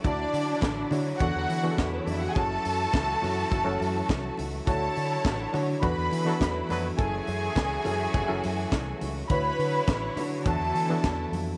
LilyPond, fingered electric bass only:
\new Staff \with { instrumentName = "Fingered electric bass" } { \clef bass \time 4/4 \key fis \minor \tempo 4 = 104 d,8 d8 a,,8 d8 e,16 e,16 e8 e,8 eis,8 | fis,,8 fis,8 cis,8 fis,8 fis,,16 fis,,16 fis,8 bis,,8 cis,8 | d,8 d8 a,,8 d8 e,16 e,16 e8 e,8 eis,8 | fis,,8 fis,8 cis,8 fis,8 fis,,16 fis,,16 fis,8 bis,,8 cis,8 |
d,8 d8 a,,8 d8 e,16 e,16 e8 e,8 eis,8 | }